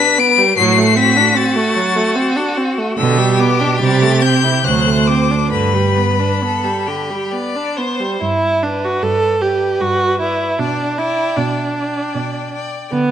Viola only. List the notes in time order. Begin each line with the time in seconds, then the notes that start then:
0.00 D4
0.18 B3
0.39 G3
0.58 F#3
0.77 A3
0.96 C4
1.16 D4
1.35 C4
1.56 A3
1.76 F#3
1.96 A3
2.16 C4
2.36 D4
2.57 C4
2.78 A3
2.98 D3
3.19 G3
3.39 B3
3.60 D4
3.82 G3
4.02 A3
4.22 C4
4.44 E4
4.66 F#3
4.87 A3
5.08 C4
5.31 D4
5.52 D3
5.74 G3
5.97 B3
6.19 D4
6.42 B3
6.64 G3
6.87 D3
7.10 G3
7.32 B3
7.56 D4
7.78 B3
8.00 G3
8.21 E4
8.63 D4
8.84 F#4
9.03 A4
9.42 G4
9.81 F#4
10.20 E4
10.59 D4
10.98 E4
11.37 D4
12.92 B3